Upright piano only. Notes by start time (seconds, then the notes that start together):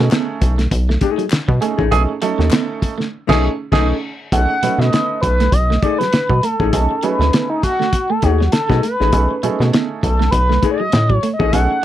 Already playing: A3 C#4 D#4 G#4
1.61 A3 C#4 D#4 G#4
1.91 A3 C#4 D#4 G#4
2.21 A3 C#4 D#4 A4
3.29 A3 C#4 D#4 G#4
3.73 A3 C#4 D#4 G#4
4.33 A3 C#4 D#4 G#4
4.63 A3 C#4 D#4 B4
6.73 A3 C#4 D#4 G#4
7.03 A3 C#4 D#4 G#4
9.12 A3 C#4 D#4 G#4
9.43 A3 C#4 D#4 G#4
11.54 A3 C#4 D#4 G#4